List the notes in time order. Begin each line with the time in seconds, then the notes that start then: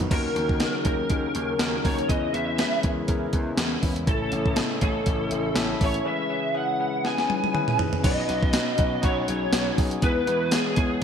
Already playing: B3 D#4 F#4 G#4 A#4 B4 C#5
0.00 closed hi-hat, floor tom
0.10 D#2 D#3 C#4 D#4 F#4 A#4, kick, closed hi-hat, crash
0.34 D#2 C#4 D#4 F#4 A#4, closed hi-hat
0.49 kick
0.59 C#4 D#4 F#4 G#4, snare, closed hi-hat
0.84 D#2 C#4 D#4 F#4 A#4, kick, closed hi-hat
1.09 D#2 C#4 D#4 F#4 A#4, kick, closed hi-hat
1.34 D#2 C#4 D#4 F#4 A#4, closed hi-hat
1.59 D#2 C#4 D#4 F#4 A#4, snare, closed hi-hat
1.83 D#2 C#4 D#4 F#4 A#4 C#5, kick, open hi-hat
1.98 closed hi-hat
2.09 E2 C#3 E3 G#3 C#4 E4 G#4 B4 D#5, kick, closed hi-hat
2.33 E2 C#4 E4 G#4 B4 E5, closed hi-hat
2.58 C#4 E4 G#4 B4, snare, closed hi-hat
2.83 E2 C#4 E4 G#4 A#4, kick, closed hi-hat
3.07 E2 C#4 E4 G#4 A#4, kick, closed hi-hat
3.33 E2 D#5 G#5, kick, closed hi-hat
3.57 E2 C#5 F#5, snare, closed hi-hat
3.82 E2 B4 E5, kick, open hi-hat
3.96 closed hi-hat
4.07 A1 A2 A3 C#4 E4 A4 C#5, kick, closed hi-hat
4.31 A1 C#4 E4 A4 C#5, closed hi-hat
4.46 kick
4.56 C#4 E4 A4 D#5, snare, closed hi-hat
4.81 A1 C#4 E4 A4 C#5, kick, closed hi-hat
5.05 A1 C#4 E4 A4 C#5, kick, closed hi-hat
5.30 A1 C#4 E4 A4 E5, closed hi-hat
5.54 A1 C#4 E4 A4 E5, snare, closed hi-hat
5.80 A1 C#4 E4 A4 E5, kick, open hi-hat
5.84 C#5
5.94 closed hi-hat
6.05 E3 G#3 C#4 E4 G#4 B4 E5
6.29 C#4 E4 G#4 B4
6.54 C#4 E4 G#4 B4 F#5
6.79 C#4 E4 G#4 B4
7.04 C#4 E4 G#4 B4 G#5, snare
7.18 snare
7.28 C#4 E4 G#4 B4, high tom
7.44 high tom
7.53 C#4 E4 G#4 B4, mid tom
7.68 mid tom
7.77 C#4 E4 G#4 B4, floor tom
7.93 floor tom
8.03 B1 B2 F#3 B3 C#4 D#4 F#4 B4 D#5, kick, closed hi-hat, crash
8.07 B3
8.28 B1 F#3 B3 C#4 D#4 F#4 B4, closed hi-hat
8.43 kick
8.53 B2 F#3 B3 C#4 D#4 F#4 B4, snare, closed hi-hat, tambourine
8.77 B1 B3 C#4 D#4 F#4 B4, kick, closed hi-hat
9.02 B1 B2 F#3 B3 C#4 D#4 F#4 B4 C#5, kick, closed hi-hat
9.07 B3
9.27 B1 B3 C#4 D#4 F#4 G#4, closed hi-hat
9.52 B1 B3 C#4 D#4 F#4 B4, snare, closed hi-hat, tambourine
9.77 B1 B3 C#4 D#4 F#4 G#4, kick, open hi-hat
9.91 closed hi-hat
10.02 E2 B2 E3 G#3 B3 E4 G#4 B4, kick, closed hi-hat
10.27 E2 B2 E3 G#3 B3 E4 G#4 B4, closed hi-hat
10.51 G#3 B3 E4 G#4 C#5, snare, closed hi-hat, tambourine
10.76 E2 G#3 B3 E4 G#4 C#5, kick, closed hi-hat